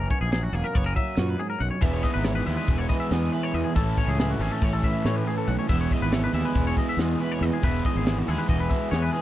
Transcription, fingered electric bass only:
0.21 0.47 A#1 medium
0.52 0.61 E1 medium
0.76 0.93 F#1 medium
1.18 1.35 F#2 medium
1.60 1.69 B1 medium
1.82 1.99 E1 loud
2.15 2.41 G#1 medium
2.47 2.56 D#2 medium
2.68 2.85 E1 medium
3.11 3.28 E2 medium
3.54 3.63 E2 medium
3.75 3.93 A1 loud
4.07 4.33 C#2 medium
4.39 4.48 G#1 medium
4.62 4.79 A1 medium
5.05 5.22 A2 medium
5.48 5.56 B1 medium
5.69 5.86 E1 loud
6.01 6.27 G#1 medium
6.33 6.42 D#2 medium
6.55 6.72 E1 medium
6.97 7.15 E2 medium
7.41 7.50 E2 medium
7.63 7.80 E1 medium
7.95 8.21 G#1 medium
8.28 8.36 D#2 medium
8.49 8.66 E1 medium
8.92 9.09 E2 medium

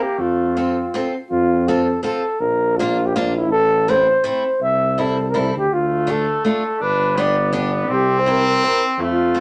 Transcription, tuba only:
0.18 0.91 F2 medium
1.31 2.03 F2 loud
2.40 3.52 A#1 loud
3.51 4.23 A1 loud
4.60 5.34 C2 medium
5.36 5.53 C2 loud
5.55 5.72 D2 medium
5.72 6.43 D2 medium
6.81 7.90 G1 medium
7.89 8.60 C2 medium
8.97 9.35 F2 medium

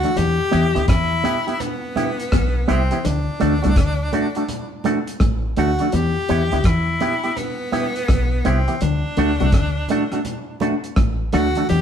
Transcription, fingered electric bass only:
0.18 0.38 E2 loud
0.54 0.74 E2 medium
0.77 0.88 D2 medium
0.89 1.21 E2 medium
2.33 2.65 B1 medium
2.70 2.90 C2 medium
3.06 3.26 D2 loud
3.42 3.62 D2 loud
3.65 3.77 C2 loud
3.77 4.09 D2 medium
5.21 5.53 A1 medium
5.58 5.78 D2 loud
5.94 6.14 E2 loud
6.30 6.50 E2 medium
6.53 6.64 D2 medium
6.65 6.97 E2 medium
8.10 8.42 B1 medium
8.46 8.66 C2 medium
8.82 9.02 D2 loud
9.18 9.38 D2 loud
9.41 9.53 C2 medium
9.53 9.86 D2 medium
10.98 11.30 A1 medium
11.34 11.54 D2 loud
11.71 11.82 E2 loud

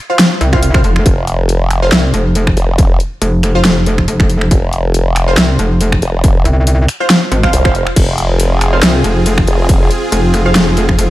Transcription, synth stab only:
0.10 0.16 F4 loud
0.10 0.16 C5 medium
0.10 0.16 F5 loud
0.53 0.62 F4 medium
0.53 0.62 C5 medium
0.53 0.62 F5 loud
0.74 0.80 F4 medium
0.74 0.80 C5 medium
0.74 0.80 F5 loud
1.82 1.88 F4 loud
1.82 1.88 C5 medium
1.82 1.88 F5 loud
3.55 3.61 F4 medium
3.55 3.61 C5 medium
3.55 3.61 F5 loud
5.28 5.34 F4 medium
5.28 5.34 C5 medium
5.28 5.34 F5 loud
7.00 7.06 F4 loud
7.00 7.06 C5 medium
7.00 7.06 F5 loud
7.43 7.53 F4 medium
7.43 7.53 C5 medium
7.43 7.53 F5 loud
7.65 7.71 F4 medium
7.65 7.71 C5 medium
7.65 7.71 F5 loud
8.73 8.79 F4 loud
8.73 8.79 C5 medium
8.73 8.79 F5 loud
10.46 10.52 F4 medium
10.46 10.52 C5 medium
10.46 10.52 F5 loud

